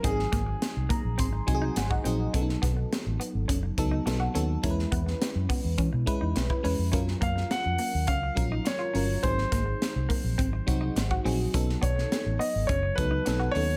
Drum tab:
HH |x-x-x-x-x-x-x-x-|x-x-x-x-x-x-x-x-|x-x-x-o-x-x-x-o-|x-x-x-o-x-x-x-o-|
SD |-oo-o-------o---|-oo-o-------o---|-o-oo-------o---|-o-oo-------o---|
BD |o-o---o-o-o--o--|o-o-----o-o-----|o-o---o-o-o--o--|o-o-----o-o-----|

HH |x-x-x-o-x-x-x-o-|x-x-x-o-x-x-x-o-|
SD |-oo-o-------o---|-o-oo-------o---|
BD |o-o---o-o-o--o--|o-o-----o-o-----|